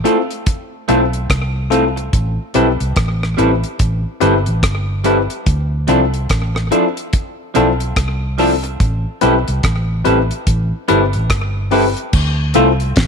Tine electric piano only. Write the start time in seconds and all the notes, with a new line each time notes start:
0.04 C4 E4 F4 A4
0.89 C4 E4 F4 A4
1.70 C4 E4 F4 A4
2.55 C4 E4 G4 B4
3.38 C4 E4 G4 B4
4.21 C4 E4 G4 B4
5.05 C4 E4 G4 B4
5.89 C4 E4 F4 A4
6.71 C4 E4 F4 A4
7.56 C4 E4 F4 A4
8.39 C4 E4 F4 A4
9.21 C4 E4 G4 B4
10.04 C4 E4 G4 B4
10.89 C4 E4 G4 B4
11.71 C4 E4 G4 B4
12.55 C4 E4 F4 A4